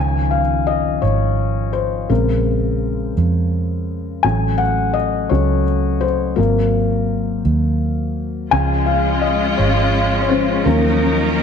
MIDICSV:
0, 0, Header, 1, 4, 480
1, 0, Start_track
1, 0, Key_signature, -5, "major"
1, 0, Tempo, 712589
1, 1417, Time_signature, 6, 3, 24, 8
1, 7699, End_track
2, 0, Start_track
2, 0, Title_t, "Felt piano"
2, 0, Program_c, 0, 0
2, 0, Note_on_c, 0, 51, 38
2, 0, Note_on_c, 0, 53, 31
2, 0, Note_on_c, 0, 61, 41
2, 0, Note_on_c, 0, 80, 77
2, 96, Control_c, 0, 64, 127
2, 197, Note_off_c, 0, 80, 0
2, 208, Note_on_c, 0, 77, 65
2, 263, Note_off_c, 0, 77, 0
2, 450, Note_on_c, 0, 75, 62
2, 666, Note_off_c, 0, 51, 0
2, 669, Note_off_c, 0, 53, 0
2, 670, Note_off_c, 0, 61, 0
2, 686, Note_on_c, 0, 73, 59
2, 700, Note_off_c, 0, 75, 0
2, 1144, Note_off_c, 0, 73, 0
2, 1165, Note_on_c, 0, 72, 55
2, 1393, Note_off_c, 0, 72, 0
2, 1411, Note_on_c, 0, 70, 55
2, 1415, Note_on_c, 0, 49, 35
2, 1418, Note_on_c, 0, 56, 32
2, 1424, Note_on_c, 0, 60, 39
2, 1425, Control_c, 0, 64, 0
2, 1524, Control_c, 0, 64, 127
2, 2107, Note_off_c, 0, 70, 0
2, 2109, Note_off_c, 0, 49, 0
2, 2111, Note_off_c, 0, 56, 0
2, 2114, Note_off_c, 0, 60, 0
2, 2848, Note_on_c, 0, 80, 76
2, 2857, Note_on_c, 0, 54, 35
2, 2859, Note_on_c, 0, 57, 39
2, 2863, Note_on_c, 0, 61, 45
2, 2865, Control_c, 0, 64, 0
2, 3000, Control_c, 0, 64, 127
2, 3083, Note_on_c, 0, 78, 75
2, 3100, Note_off_c, 0, 80, 0
2, 3324, Note_on_c, 0, 75, 63
2, 3338, Note_off_c, 0, 78, 0
2, 3566, Note_off_c, 0, 54, 0
2, 3567, Note_on_c, 0, 73, 57
2, 3569, Note_off_c, 0, 57, 0
2, 3569, Note_off_c, 0, 61, 0
2, 3576, Note_on_c, 0, 54, 37
2, 3579, Note_off_c, 0, 75, 0
2, 3579, Note_on_c, 0, 57, 31
2, 3579, Note_on_c, 0, 61, 39
2, 3793, Note_off_c, 0, 54, 0
2, 3794, Note_off_c, 0, 57, 0
2, 3794, Note_off_c, 0, 61, 0
2, 4046, Note_on_c, 0, 72, 61
2, 4067, Note_off_c, 0, 73, 0
2, 4283, Note_on_c, 0, 70, 56
2, 4287, Note_on_c, 0, 54, 36
2, 4291, Note_on_c, 0, 58, 36
2, 4296, Note_on_c, 0, 60, 41
2, 4300, Note_off_c, 0, 72, 0
2, 4306, Control_c, 0, 64, 0
2, 4422, Control_c, 0, 64, 127
2, 4984, Note_off_c, 0, 70, 0
2, 5705, Note_off_c, 0, 54, 0
2, 5708, Note_off_c, 0, 58, 0
2, 5710, Note_off_c, 0, 60, 0
2, 5732, Note_on_c, 0, 53, 38
2, 5735, Note_on_c, 0, 80, 80
2, 5737, Note_on_c, 0, 56, 34
2, 5742, Note_on_c, 0, 61, 43
2, 5747, Control_c, 0, 64, 0
2, 5863, Control_c, 0, 64, 127
2, 5959, Note_off_c, 0, 80, 0
2, 5969, Note_on_c, 0, 77, 66
2, 6208, Note_on_c, 0, 75, 63
2, 6221, Note_off_c, 0, 77, 0
2, 6263, Note_off_c, 0, 75, 0
2, 6428, Note_off_c, 0, 53, 0
2, 6430, Note_off_c, 0, 56, 0
2, 6433, Note_off_c, 0, 61, 0
2, 6451, Note_on_c, 0, 73, 60
2, 6871, Note_off_c, 0, 73, 0
2, 6881, Note_on_c, 0, 73, 51
2, 6932, Note_on_c, 0, 72, 57
2, 6933, Note_off_c, 0, 73, 0
2, 6938, Note_on_c, 0, 53, 33
2, 6940, Note_on_c, 0, 56, 29
2, 6944, Note_on_c, 0, 61, 41
2, 7154, Note_off_c, 0, 53, 0
2, 7155, Note_off_c, 0, 56, 0
2, 7157, Note_off_c, 0, 61, 0
2, 7171, Note_on_c, 0, 70, 59
2, 7178, Note_on_c, 0, 53, 38
2, 7182, Note_off_c, 0, 72, 0
2, 7183, Note_on_c, 0, 54, 34
2, 7185, Note_on_c, 0, 61, 39
2, 7186, Control_c, 0, 64, 0
2, 7302, Control_c, 0, 64, 127
2, 7497, Note_off_c, 0, 53, 0
2, 7499, Note_off_c, 0, 54, 0
2, 7501, Note_off_c, 0, 61, 0
2, 7699, Note_off_c, 0, 70, 0
2, 7699, End_track
3, 0, Start_track
3, 0, Title_t, "String section"
3, 0, Program_c, 1, 48
3, 5745, Note_on_c, 1, 56, 54
3, 5746, Note_on_c, 1, 61, 57
3, 5746, Note_on_c, 1, 65, 63
3, 7167, Note_off_c, 1, 56, 0
3, 7167, Note_off_c, 1, 65, 0
3, 7174, Note_on_c, 1, 70, 66
3, 7175, Note_on_c, 1, 63, 59
3, 7177, Note_on_c, 1, 58, 58
3, 7178, Note_on_c, 1, 51, 54
3, 7699, Note_off_c, 1, 51, 0
3, 7699, Note_off_c, 1, 58, 0
3, 7699, Note_off_c, 1, 61, 0
3, 7699, Note_off_c, 1, 63, 0
3, 7699, Note_off_c, 1, 70, 0
3, 7699, End_track
4, 0, Start_track
4, 0, Title_t, "Fingered electric bass"
4, 0, Program_c, 2, 33
4, 0, Note_on_c, 2, 37, 64
4, 666, Note_off_c, 2, 37, 0
4, 694, Note_on_c, 2, 32, 63
4, 1388, Note_off_c, 2, 32, 0
4, 1414, Note_on_c, 2, 34, 74
4, 2109, Note_off_c, 2, 34, 0
4, 2138, Note_on_c, 2, 41, 67
4, 2831, Note_off_c, 2, 41, 0
4, 2859, Note_on_c, 2, 33, 68
4, 3552, Note_off_c, 2, 33, 0
4, 3579, Note_on_c, 2, 37, 62
4, 4272, Note_off_c, 2, 37, 0
4, 4299, Note_on_c, 2, 32, 73
4, 5021, Note_on_c, 2, 39, 67
4, 5031, Note_off_c, 2, 32, 0
4, 5713, Note_off_c, 2, 39, 0
4, 5740, Note_on_c, 2, 37, 64
4, 6432, Note_off_c, 2, 37, 0
4, 6461, Note_on_c, 2, 32, 61
4, 7152, Note_off_c, 2, 32, 0
4, 7181, Note_on_c, 2, 39, 70
4, 7699, Note_off_c, 2, 39, 0
4, 7699, End_track
0, 0, End_of_file